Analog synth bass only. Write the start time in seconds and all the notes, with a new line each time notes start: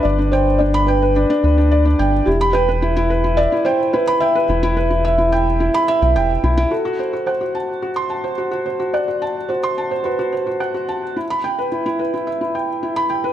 0.05 G1
1.44 D2
1.99 G1
2.27 E1
4.49 E1
6.02 B1
6.16 E1
6.43 B1